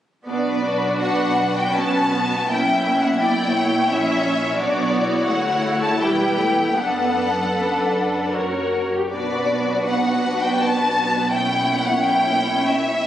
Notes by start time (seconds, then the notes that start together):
0.26 B1 B2 B3 D4 F#4 B4 D5
0.65 D4
1.01 B4 F#5
1.57 G5
1.75 B3 C#4 A5
2.12 B3
2.48 B1 B2 A#3 C#4 E4 E5 G5
3.01 F#5
3.19 E4 D5 G5
3.57 C#5
3.88 A#1 A#2 C#4 E4 E5
4.23 C#4
4.56 B1 B2 B3 D4 F#4 D5
4.92 E4
5.26 D2 A3 F#5
5.81 A5
6.00 E1 E2 G3 G4 B4 G5
6.38 A3
6.76 F#1 F#2 B3 D4 A4 B4 F#5
7.55 D4
8.34 F#1 F#2 F#4 A#4 C#5
8.93 G4
9.10 B1 B2 B3 D4 F#4 B4 D5
9.86 F#5
10.42 G5
10.60 A5
11.30 A#3 C#4 E4 C#5 G5
11.83 F#5
12.01 G5
12.69 E5